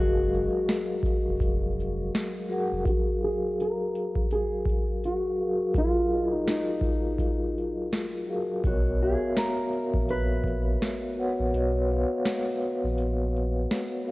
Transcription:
Already playing: sub bass F#1, vibraphone F#3 F#4 G#4 A#4 F5, ambient pad F#3 G#3 F#4, nylon-string guitar F#4
0.00 vibraphone D#5
0.34 shaker
0.69 snare, closed hi-hat
1.03 kick, closed hi-hat, shaker
1.27 sub bass F1
1.40 kick, closed hi-hat
1.80 closed hi-hat, shaker
2.15 snare, closed hi-hat
2.48 vibraphone F#3 F#4 G#4 A#4 F#5, shaker
2.72 sub bass F1
2.84 vibraphone F#3 F#4 G#4 A#4, kick, closed hi-hat
2.89 nylon-string guitar F#4
3.21 vibraphone F#3 F#4 G#4 A#4 F5, nylon-string guitar G#4
3.60 nylon-string guitar A#4, closed hi-hat
3.95 closed hi-hat
4.15 kick
4.31 nylon-string guitar G#4, closed hi-hat
4.65 kick, closed hi-hat
5.04 nylon-string guitar F#4, closed hi-hat
5.37 vibraphone F#3 F#4 G#4 A#4 F5
5.73 vibraphone F#3 F4 G#4 A#4 F5, kick, closed hi-hat
5.78 nylon-string guitar F4
6.09 vibraphone F#3 F4 G#4 A#4 D#5
6.32 nylon-string guitar D#4
6.48 nylon-string guitar D#4, snare, closed hi-hat
6.81 kick, closed hi-hat
7.18 kick, closed hi-hat
7.58 closed hi-hat
7.93 snare, closed hi-hat
8.26 vibraphone F#3 F#4 G#4 A#4 F5
8.63 sub bass B1, vibraphone B3 F#4 A#4 C#5 D#5, nylon-string guitar F#4, kick, closed hi-hat
8.99 vibraphone B3 F#4 A#4 C#5 E5, nylon-string guitar G#4
9.09 vibraphone F5
9.37 nylon-string guitar A#4, snare, closed hi-hat
9.73 closed hi-hat
9.94 sub bass A#1, kick
10.09 nylon-string guitar B4, closed hi-hat
10.44 kick, closed hi-hat
10.82 snare, closed hi-hat
11.16 vibraphone B3 F#4 B4 C#5 F#5
11.39 sub bass A#1
11.51 sub bass B1, vibraphone B3 F#4 B4 C#5 D#5, closed hi-hat
11.88 vibraphone B3 F#4 B4 C#5 F5
12.26 snare, closed hi-hat
12.62 closed hi-hat
12.84 sub bass A#1
12.98 closed hi-hat
13.36 closed hi-hat
13.71 snare, closed hi-hat
14.04 vibraphone B3 F#4 A#4 C#5 F5

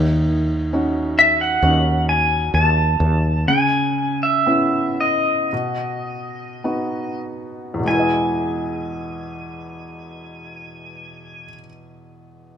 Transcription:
Already playing: fretless electric bass D#2, felt piano D#3
0.73 felt piano C#4 D#4 F#4
1.19 pedal steel guitar E5
1.41 pedal steel guitar F#5
1.62 fretless electric bass D#2, felt piano C#4 D#4 F#4
2.09 pedal steel guitar G#5
2.54 fretless electric bass D#2, pedal steel guitar A5
3.00 fretless electric bass D#2
3.48 felt piano C#3, pedal steel guitar G#5
4.23 pedal steel guitar E5
4.46 felt piano B3 C#4 E4
5.01 pedal steel guitar D#5
5.53 felt piano B2
6.64 felt piano B3 D#4 F#4
7.74 felt piano E2
7.79 felt piano B2
7.85 felt piano G#3, pedal steel guitar G#5
7.90 felt piano E4
7.94 felt piano B4
7.99 felt piano D#5

